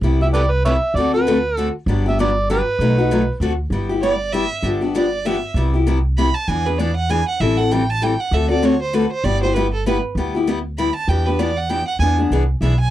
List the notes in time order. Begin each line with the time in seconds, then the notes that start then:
0.01 C2 C3 G3 B3 E4 G4
0.21 B3 E4 G4 E5
0.34 C3 G3 B3 E4 G4 A4 B4 D5
0.51 B4
0.65 C3 G3 B3 E4 G4 B4 C#5 E5
0.94 D2 D3 A3 C4 F#4 D5
0.98 A4
1.14 C4 F#4 A4 B4
1.27 D3 A3 C4 F#4 A4
1.57 D3 A3 C4 F#4 A4
1.86 G1 D3 F#3 B3 D4 G4
2.06 B3 D4 G4 E5
2.19 D3 F#3 B3 D4 G4 D5
2.50 D3 F#3 B3 D4 G4 B4
2.79 B1 B2 F#3 A3 D#4 F#4
2.98 A3 D#4 F#4
3.11 B2 F#3 A3 D#4 F#4
3.40 D2 D3 A3 C4 F#4 A4
3.70 G1 G3 B3 E4 G4
3.89 B3 E4 G4
4.03 G3 B3 E4 G4 D5
4.32 G3 B3 E4 G4 E5
4.63 G1 D3 F3 B3 D4 G4
4.81 B3 D4 G4
4.95 D3 F3 B3 D4 G4 D5
5.25 D3 F3 B3 D4 G4 E5
5.54 C2 C3 G3 B3 E4 G4
5.74 B3 E4 G4
5.87 C3 G3 B3 E4 G4
6.18 C3 G3 B3 E4 G4 B5
6.34 A5
6.48 E2 E3 B3 D4 G#4 G#5
6.66 B3 D4 G#4 B4
6.78 E3 B3 D4 G#4 D5
6.96 F#5
7.09 E3 B3 D4 G#4 G#5
7.28 F#5
7.40 A1 E3 G3 C4 E4 A4 E5
7.57 C4 E4 A4 F#5
7.71 E3 G3 C4 E4 A4 G5
7.90 A5
8.02 E3 G3 C4 E4 A4 G5
8.20 F#5
8.31 D2 D3 A3 C4 F#4 A4 E5
8.49 C4 F#4 A4 D5
8.62 D3 A3 C4 F#4 A4 C#5
8.82 C5
8.93 D3 A3 C4 F#4 A4 B4
9.12 C5
9.24 G1 G3 B3 E4 G4 D5
9.43 B3 E4 G4 C5
9.54 G3 B3 E4 G4 B4
9.74 A4
9.86 G3 B3 E4 G4 B4
10.15 D2 G3 B3 E4 G4
10.35 B3 E4 G4
10.47 G3 B3 E4 G4
10.78 G3 B3 E4 G4 B5
10.95 A5
11.08 E2 E3 B3 D4 G4 G5
11.26 B3 D4 G4 B4
11.39 E3 B3 D4 G4 D5
11.57 F#5
11.69 E3 B3 D4 G4 G5
11.88 F#5
11.99 E2 E3 B3 D4 G#4 G#5
12.18 B3 D4 G#4
12.30 C2 E3 B3 D4 G#4
12.61 B1 E3 B3 D4 G#4 E5
12.80 G#5